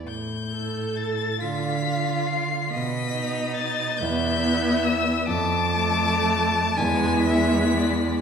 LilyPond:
<<
  \new Staff \with { instrumentName = "Violin" } { \time 6/8 \key d \dorian \tempo 4. = 45 g'''4 a'''8 b'''4 c''''8 | b'''4 a'''8 g'''4 e'''8 | d'''4. b'''4. | }
  \new Staff \with { instrumentName = "Violin" } { \time 6/8 \key d \dorian r4. f''4. | dis''4. e''4. | a''4. gis''8 e''8 d''8 | }
  \new Staff \with { instrumentName = "Viola" } { \time 6/8 \key d \dorian r8 a'4 f'8 f'4 | r8 dis'4 b8 b4 | r8 a4 gis8 gis4 | }
  \new Staff \with { instrumentName = "Cello" } { \clef bass \time 6/8 \key d \dorian a,4. d4. | b,4. e,4. | f,4. e,4. | }
>>